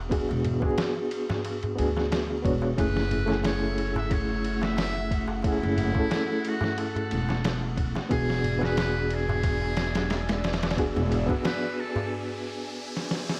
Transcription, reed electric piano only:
0.09 B3 D4 F#4 G#4
0.60 B3 D4
0.64 F#4 G#4
1.76 B3 D4 F#4 G#4
2.42 B3 D4 F#4 C#5
2.76 A3 C#4 E4 G#4
3.26 A3 C#4
3.30 E4 G#4
5.44 A3 C#4 E4 G#4
5.94 A3 C#4 E4
5.99 A4
8.09 B3 D4 F#4 G#4
8.59 B3 D4 F#4
8.65 G#4
10.77 B3 D4 F#4 G#4
11.26 B3 D4
11.30 F#4 B4

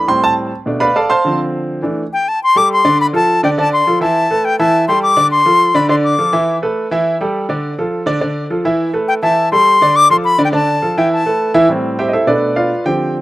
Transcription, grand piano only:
0.07 A2 G3 C4 C6
0.24 A5
0.66 B2 A3 D4
0.80 B4 D5 F5 B5
0.96 A4 D5 F5 A5
1.10 C5 F5 A5 C6
1.25 D3 F3 C4
1.82 E3 A3 D4
2.56 G3 G4 A4
2.84 D3 D4 D5
3.13 F3 F4 A4
3.43 D3 D4 D5
3.58 D3 D4 D5
3.87 F3 F4 A4
4.01 E3 E4 E5
4.30 A3 A4 B4
4.59 E3 E4 E5
4.88 G3 G4 A4
5.17 D3 D4 D5
5.45 F3 F4 A4
5.74 D3 D4 D5
5.89 D3 D4 D5
6.18 F3 F4 A4
6.33 E3 E4 E5
6.62 A3 A4 B4
6.91 E3 E4 E5
7.21 G3 G4 A4
7.49 D3 D4 D5
7.78 F3 F4 A4
8.06 D3 D4 D5
8.21 D3 D4 D5
8.50 F3 F4 A4
8.65 E3 E4 E5
8.93 A3 A4 B4
9.23 E3 E4 E5
9.52 G3 G4 A4
9.81 D3 D4 D5
10.10 F3 F4 A4
10.38 D3 D4 D5
10.52 D3 D4 D5
10.82 F3 F4 A4
10.98 E3 E4 E5
11.26 A3 A4 B4
11.54 E3 E4 E5
11.69 A2 G3 C4
11.99 G4 C5 E5 G5
12.08 D#5
12.13 E4 A4 C5 E5
12.27 B2 A3 D4 A4 B4 D5
12.56 F4 B4 D5 F5
12.85 D3 F3 C4 G4 G5

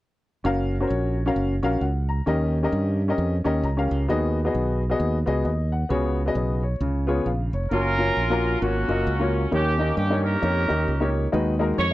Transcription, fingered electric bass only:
0.45 F#1
0.90 A#1
1.36 F#1
1.63 A#1
1.81 C#2
2.27 D#2
2.72 G2
3.18 F2
3.45 D#2
3.63 C#2
3.91 C#2
4.09 D#2
4.55 B1
5.00 D#2
5.27 C#2
5.45 D#2
5.90 C#2
6.35 B1
6.80 C#2
7.26 A#1
7.53 F1
7.71 F#1
8.17 A#1
8.62 G#1
8.89 F#1
9.07 C#2
9.52 D#2
9.97 G2
10.43 F2
10.70 D#2
10.88 C#2
11.33 D#2
11.78 F2

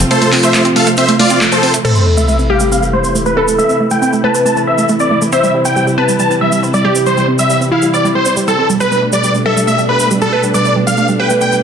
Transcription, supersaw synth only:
0.11 A4 C5
0.43 C5 E5
0.76 A4 F5
0.98 C5 E5
1.19 F4 D5
1.52 A4 C5
1.85 C5
2.17 E5
2.50 F5
2.72 F5
2.93 C5
3.26 B4
3.58 E5
3.91 G5
4.24 A5
4.46 A5
4.67 E5
5.00 D5
5.33 E5
5.65 G5
5.98 A5
6.19 A5
6.41 E5
6.74 D5
7.07 C5
7.39 E5
7.72 F5
7.94 D5
8.15 C5
8.48 A4
8.80 B4
9.13 D5
9.46 E5
9.67 E5
9.89 B4
10.22 A4
10.54 D5
10.87 F5
11.19 G5
11.41 G5

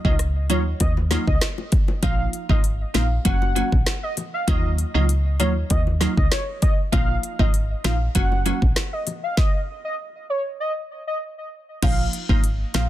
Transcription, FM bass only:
0.05 C#2
0.50 D#2
0.81 D#2
1.27 C#2
2.03 A#1
2.49 G#1
2.95 A#1
3.26 F#1
3.72 A#1
4.48 D#2
4.95 C#2
5.40 D#2
5.71 D#2
6.17 C#2
6.93 A#1
7.39 G#1
7.85 A#1
8.15 F#1
8.62 A#1
11.83 A#1
12.29 G#1
12.74 A#1

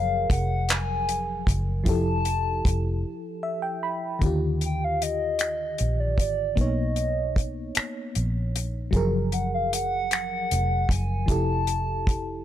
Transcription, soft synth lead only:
Already playing: F5
0.31 F#5
0.70 G#5
1.88 A5
4.66 G5
4.84 F5
5.03 D#5
6.00 D5
6.21 D5
6.59 D#5
9.33 F#5
9.54 F5
9.74 F#5
10.91 G#5
11.31 A5

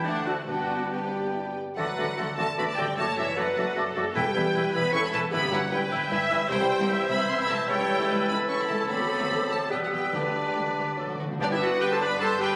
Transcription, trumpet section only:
0.05 F#5
0.26 E5
0.48 D5
0.92 D5
11.41 G4
11.51 G4
11.61 A4
11.80 B4
11.91 C5
12.00 D5
12.20 C5
12.40 B4

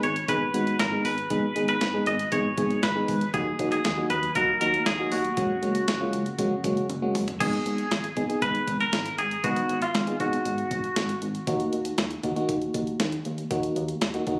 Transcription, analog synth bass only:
0.03 G#1
0.28 G#1
0.54 G#1
0.79 G#1
1.05 G#1
1.30 G#1
1.56 G#1
1.81 G#1
2.07 G#1
2.32 G#1
2.57 G#1
2.83 G#1
3.08 G#1
3.34 D#2
3.59 D#2
3.85 D#2
4.10 D#2
4.35 D#2
4.61 D#2
4.86 D#2
5.12 D#2
5.37 F#1
5.62 F#1
5.88 F#1
6.13 F#1
6.38 F#1
6.64 F#1
6.90 F#1
7.15 F#1
7.41 G#1
7.66 G#1
7.91 G#1
8.17 G#1
8.42 G#1
8.68 G#1
8.93 G#1
9.18 G#1
9.44 G#1
9.69 G#1
9.95 G#1
10.20 G#1
10.46 G#1
10.71 G#1
10.97 G#1
11.22 G#1
11.47 D#2
11.73 D#2
11.98 D#2
12.24 D#2
12.49 D#2
12.74 D#2
13.00 D#2
13.25 D#2
13.51 D#2
13.76 D#2
14.01 D#2
14.27 D#2

